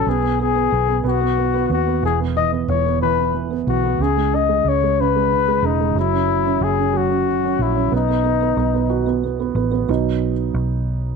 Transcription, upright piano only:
0.08 0.21 B3 medium
0.23 0.38 B3 soft
0.40 0.54 B3 soft
0.55 0.70 B3 soft
0.71 0.87 B3 soft
0.89 1.02 B3 soft
1.04 1.19 B3 medium
1.21 1.36 B3 soft
1.37 1.53 B3 soft
1.54 1.68 B3 soft
1.70 1.85 B3 soft
1.87 2.02 B3 soft
2.03 2.35 E3 medium
2.20 2.50 B3 soft
2.36 2.69 E3 soft
2.52 2.85 B3 soft
2.70 3.01 E3 soft
2.87 3.17 B3 soft
3.02 3.33 E3 medium
3.18 3.49 B3 soft
3.34 3.66 E3 soft
3.51 3.82 B3 soft
3.68 3.99 E3 soft
3.84 3.99 B3 soft
4.00 4.32 C#3 medium
4.17 4.47 G#3 soft
4.33 4.64 C#3 medium
4.49 4.82 G#3 soft
4.66 4.99 C#3 soft
4.83 5.14 G#3 soft
5.00 5.31 C#3 medium
5.16 5.46 G#3 soft
5.32 5.62 C#3 soft
5.48 5.79 G#3 medium
5.63 5.95 C#3 soft
5.80 5.96 G#3 soft
5.96 6.26 F#3 medium
6.13 6.44 C#4 soft
6.28 6.60 F#3 medium
6.46 6.77 C#4 soft
6.62 6.92 F#3 soft
6.79 7.09 C#4 soft
6.93 7.26 F#3 medium
7.10 7.43 C#4 soft
7.28 7.59 F#3 soft
7.44 7.74 C#4 soft
7.61 7.92 F#3 soft
7.76 7.92 C#4 soft
7.92 8.07 B3 medium
8.09 8.22 B3 soft
8.24 8.39 B3 soft
8.41 8.56 B3 soft
8.57 8.72 B3 soft
8.74 9.05 B3 soft
8.89 9.85 F#4 medium
9.06 9.22 B3 medium
9.24 9.38 B3 soft
9.40 9.55 B3 medium
9.56 9.70 B3 soft
9.72 9.87 B3 medium
9.88 10.32 F#3 soft
9.88 10.32 B3 soft
9.88 10.33 D#4 medium

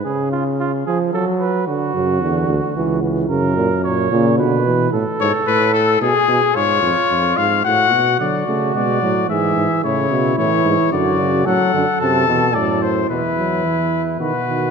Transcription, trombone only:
0.05 0.85 C#3 medium
0.87 1.13 F3 medium
1.14 1.69 F#3 medium
1.67 1.94 D3 medium
1.95 2.21 C#3 medium
2.22 2.75 D3 medium
2.76 3.02 E3 medium
3.02 3.29 E3 medium
3.29 3.56 C#3 medium
3.57 3.69 A#2 medium
3.84 4.11 A#2 medium
4.11 4.40 C#3 medium
4.39 4.65 D3 medium
4.66 4.92 E3 medium
8.20 8.45 F#3 medium
8.47 8.76 A3 medium
8.74 9.01 G#3 medium
9.02 9.31 F#3 medium
9.29 9.85 E3 medium
9.84 10.37 C#3 medium
10.38 10.91 E3 medium
10.92 11.21 D3 medium
11.19 11.46 C#3 medium
11.46 11.73 F#3 medium
11.74 11.86 D3 medium
12.01 12.27 C3 medium
12.28 12.56 B2 medium
12.55 13.09 A2 medium
13.10 13.22 B2 medium
13.37 13.66 F#3 medium
13.65 14.19 E3 medium
14.20 14.32 D#3 medium
14.48 14.71 D#3 medium

